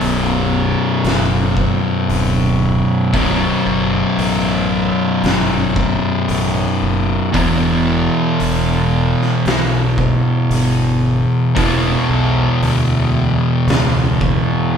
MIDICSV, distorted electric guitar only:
0, 0, Header, 1, 2, 480
1, 0, Start_track
1, 0, Key_signature, 2, "minor"
1, 0, Tempo, 1047120
1, 1439, Time_signature, 4, 2, 24, 8
1, 3363, Tempo, 1058201
1, 6737, End_track
2, 0, Start_track
2, 0, Title_t, "Distorted electric guitar"
2, 0, Program_c, 0, 30
2, 0, Note_on_c, 0, 35, 83
2, 0, Note_on_c, 0, 42, 93
2, 0, Note_on_c, 0, 47, 95
2, 1421, Note_off_c, 0, 35, 0
2, 1426, Note_off_c, 0, 42, 0
2, 1429, Note_off_c, 0, 47, 0
2, 1433, Note_on_c, 0, 35, 88
2, 1442, Note_on_c, 0, 42, 94
2, 1449, Note_on_c, 0, 47, 99
2, 3347, Note_off_c, 0, 35, 0
2, 3352, Note_off_c, 0, 42, 0
2, 3355, Note_off_c, 0, 47, 0
2, 3360, Note_on_c, 0, 40, 90
2, 3370, Note_on_c, 0, 47, 95
2, 3379, Note_on_c, 0, 52, 96
2, 5266, Note_off_c, 0, 40, 0
2, 5271, Note_off_c, 0, 47, 0
2, 5274, Note_on_c, 0, 40, 100
2, 5275, Note_off_c, 0, 52, 0
2, 5285, Note_on_c, 0, 47, 87
2, 5292, Note_on_c, 0, 52, 97
2, 6737, Note_off_c, 0, 40, 0
2, 6737, Note_off_c, 0, 47, 0
2, 6737, Note_off_c, 0, 52, 0
2, 6737, End_track
0, 0, End_of_file